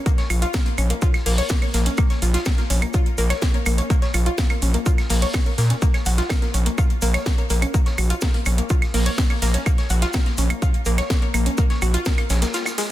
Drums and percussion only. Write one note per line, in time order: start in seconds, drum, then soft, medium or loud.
0.06 kick loud
0.06 closed hi-hat medium
0.06 shaker medium
0.18 snare medium
0.18 closed hi-hat soft
0.30 open hi-hat loud
0.30 claves medium
0.30 shaker medium
0.42 closed hi-hat medium
0.54 kick loud
0.54 snare loud
0.54 closed hi-hat medium
0.54 shaker loud
0.66 closed hi-hat soft
0.78 open hi-hat loud
0.78 claves medium
0.78 shaker medium
0.90 closed hi-hat medium
1.02 kick loud
1.02 closed hi-hat medium
1.02 shaker loud
1.14 snare soft
1.14 closed hi-hat soft
1.14 claves medium
1.26 open hi-hat loud
1.26 open hi-hat medium
1.38 closed hi-hat medium
1.49 kick loud
1.49 snare loud
1.49 closed hi-hat medium
1.49 shaker medium
1.62 closed hi-hat soft
1.62 claves medium
1.74 snare soft
1.74 open hi-hat loud
1.74 shaker medium
1.86 closed hi-hat medium
1.98 kick loud
1.98 closed hi-hat medium
1.98 claves medium
1.98 shaker medium
2.10 snare soft
2.10 closed hi-hat soft
2.22 open hi-hat loud
2.22 shaker medium
2.34 snare soft
2.34 closed hi-hat medium
2.46 kick loud
2.46 snare loud
2.46 closed hi-hat medium
2.46 claves medium
2.46 shaker medium
2.58 snare soft
2.58 closed hi-hat soft
2.70 open hi-hat loud
2.70 shaker medium
2.82 closed hi-hat medium
2.82 claves medium
2.94 kick loud
2.94 closed hi-hat medium
2.94 shaker medium
3.06 closed hi-hat soft
3.18 open hi-hat loud
3.18 shaker medium
3.30 snare medium
3.30 closed hi-hat medium
3.30 claves medium
3.42 kick loud
3.42 snare loud
3.42 closed hi-hat medium
3.42 shaker medium
3.54 closed hi-hat soft
3.66 open hi-hat loud
3.66 claves medium
3.66 shaker medium
3.78 closed hi-hat medium
3.90 kick loud
3.90 closed hi-hat medium
3.90 shaker medium
4.02 snare soft
4.02 closed hi-hat soft
4.14 open hi-hat loud
4.14 claves medium
4.14 shaker medium
4.26 closed hi-hat medium
4.38 kick loud
4.38 snare loud
4.38 closed hi-hat medium
4.38 shaker medium
4.50 closed hi-hat soft
4.50 claves medium
4.62 open hi-hat loud
4.62 shaker medium
4.74 closed hi-hat medium
4.86 kick loud
4.86 closed hi-hat medium
4.86 shaker loud
4.98 snare soft
4.98 closed hi-hat soft
4.98 claves medium
5.09 open hi-hat medium
5.09 open hi-hat loud
5.22 closed hi-hat medium
5.34 kick loud
5.34 snare loud
5.34 closed hi-hat medium
5.34 claves medium
5.34 shaker medium
5.46 closed hi-hat soft
5.58 snare soft
5.58 open hi-hat loud
5.58 shaker medium
5.70 closed hi-hat medium
5.82 kick loud
5.82 closed hi-hat medium
5.82 shaker medium
5.94 snare soft
5.94 closed hi-hat soft
5.94 claves medium
6.06 open hi-hat loud
6.06 shaker medium
6.18 snare soft
6.18 closed hi-hat medium
6.29 kick loud
6.29 snare loud
6.29 closed hi-hat medium
6.29 claves medium
6.29 shaker medium
6.42 snare soft
6.42 closed hi-hat soft
6.54 open hi-hat loud
6.54 shaker medium
6.66 closed hi-hat medium
6.78 kick loud
6.78 closed hi-hat medium
6.78 claves medium
6.78 shaker medium
6.90 closed hi-hat soft
7.02 open hi-hat loud
7.02 shaker medium
7.14 snare medium
7.14 closed hi-hat medium
7.14 claves medium
7.26 kick loud
7.26 snare loud
7.26 closed hi-hat medium
7.26 shaker medium
7.38 closed hi-hat soft
7.50 open hi-hat loud
7.50 shaker medium
7.62 closed hi-hat medium
7.62 claves medium
7.74 kick loud
7.74 closed hi-hat medium
7.74 shaker medium
7.85 snare soft
7.85 closed hi-hat soft
7.98 open hi-hat loud
7.98 claves medium
7.98 shaker medium
8.10 closed hi-hat medium
8.21 kick loud
8.21 snare loud
8.21 closed hi-hat medium
8.21 shaker medium
8.34 closed hi-hat soft
8.45 open hi-hat loud
8.45 claves medium
8.45 shaker medium
8.58 closed hi-hat medium
8.70 kick loud
8.70 closed hi-hat medium
8.70 shaker medium
8.82 snare soft
8.82 closed hi-hat soft
8.82 claves medium
8.94 open hi-hat loud
8.94 open hi-hat medium
9.06 closed hi-hat medium
9.18 kick loud
9.18 snare loud
9.18 closed hi-hat medium
9.18 shaker medium
9.30 closed hi-hat soft
9.30 claves medium
9.42 snare medium
9.42 open hi-hat loud
9.42 shaker medium
9.54 closed hi-hat medium
9.66 kick loud
9.66 closed hi-hat medium
9.66 claves medium
9.66 shaker medium
9.78 snare soft
9.78 closed hi-hat soft
9.90 open hi-hat loud
9.90 shaker medium
10.02 snare soft
10.02 closed hi-hat medium
10.13 kick loud
10.13 snare loud
10.13 closed hi-hat medium
10.13 claves medium
10.13 shaker medium
10.26 snare soft
10.26 closed hi-hat soft
10.38 open hi-hat loud
10.38 shaker medium
10.50 closed hi-hat medium
10.50 claves medium
10.62 kick loud
10.62 closed hi-hat medium
10.62 shaker medium
10.74 closed hi-hat soft
10.85 open hi-hat loud
10.85 shaker medium
10.98 snare medium
10.98 closed hi-hat medium
10.98 claves medium
11.10 kick loud
11.10 snare loud
11.10 closed hi-hat medium
11.10 shaker medium
11.22 closed hi-hat soft
11.34 open hi-hat loud
11.34 claves medium
11.34 shaker medium
11.46 closed hi-hat medium
11.58 kick loud
11.58 closed hi-hat medium
11.58 shaker medium
11.70 snare soft
11.70 closed hi-hat soft
11.82 open hi-hat loud
11.82 claves medium
11.82 shaker medium
11.94 closed hi-hat medium
12.06 kick loud
12.06 snare loud
12.06 closed hi-hat medium
12.06 shaker medium
12.18 closed hi-hat soft
12.18 claves medium
12.30 snare loud
12.30 open hi-hat loud
12.30 shaker medium
12.42 snare loud
12.42 closed hi-hat medium
12.42 shaker medium
12.54 snare loud
12.54 closed hi-hat medium
12.54 shaker medium
12.65 snare loud
12.65 closed hi-hat soft
12.65 claves medium
12.65 shaker medium
12.78 snare loud
12.78 open hi-hat loud
12.78 shaker medium